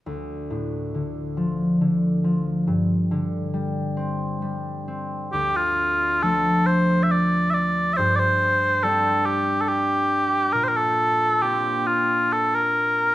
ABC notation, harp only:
X:1
M:3/4
L:1/8
Q:1/4=68
K:Dm
V:1 name="Harp" clef=bass
D,, A,, D, F, D, F, | G,, D, G, C G, C | D,,2 [F,A,D]4 | G,,2 [G,CD]4 |
B,,2 [B,CD]4 |]